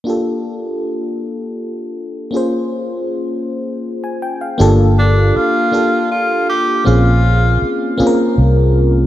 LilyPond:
<<
  \new Staff \with { instrumentName = "FM electric piano" } { \time 6/8 \key g \minor \tempo 4. = 53 << { r2. | r2 r16 aes''16 g''16 f''16~ | f''16 r2 r8. | r2. | } \\ { <bes d' f' g' a'>2. | <bes des' f' aes' c''>2. | <bes d' f' g' a'>4 r8 <bes d' f' g' a'>4 r8 | <bes c' des' f' aes'>4 r8 <bes c' des' f' aes' bes'>4 r8 | } >> }
  \new Staff \with { instrumentName = "Tenor saxophone" } { \time 6/8 \key g \minor r2. | r2. | r8 d'8 f'4 f'8 g'8 | f'4. r4. | }
  \new Staff \with { instrumentName = "Fingered electric bass" } { \clef bass \time 6/8 \key g \minor r2. | r2. | g,,4 r2 | bes,,4 r4 c,4 | }
>>